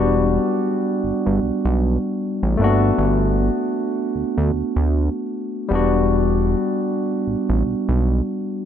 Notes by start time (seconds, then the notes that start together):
Already playing: E1 G3 B3 D4 F#4
1.04 G1
1.26 G1
1.43 B1
1.65 B1
2.43 A1
2.57 G1 A3 A#3
2.62 D4 F#4
2.66 B3
2.98 G1
4.15 D2
4.38 D2
4.54 D2
4.76 D2
5.69 E1 G3 B3
5.73 D4 F#4
7.27 A1
7.49 A1
7.66 B1
7.89 B1